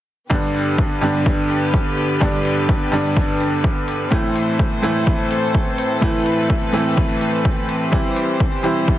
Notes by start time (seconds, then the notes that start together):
0.30 G2 D3 G3 B3 D4 G4 B4, kick
0.55 open hi-hat
0.78 kick
1.01 G2 D3 G3 B3 D4, open hi-hat
1.26 kick
1.50 open hi-hat
1.74 kick
1.97 open hi-hat
2.20 G2 D3 G3 B3 D4, kick
2.45 open hi-hat
2.69 kick
2.91 G2 D3 G3 B3 D4, open hi-hat
3.17 kick
3.29 open hi-hat
3.40 open hi-hat
3.64 kick
3.88 open hi-hat
4.11 A2 E3 A3 C4 E4 A4 C5, kick
4.36 open hi-hat
4.59 kick
4.82 A2 E3 A3 C4 E4, open hi-hat
5.07 kick
5.31 open hi-hat
5.55 kick
5.78 open hi-hat
6.01 A2 E3 A3 C4 E4 B4, kick
6.26 open hi-hat
6.50 kick
6.72 A2 E3 A3 C4 E4, open hi-hat
6.97 kick
7.09 open hi-hat
7.21 open hi-hat
7.45 kick
7.69 open hi-hat
7.91 E3 G3 C4 E4 G4 C5, kick
8.17 open hi-hat
8.40 kick
8.63 E3 G3 C4 E4, open hi-hat
8.88 kick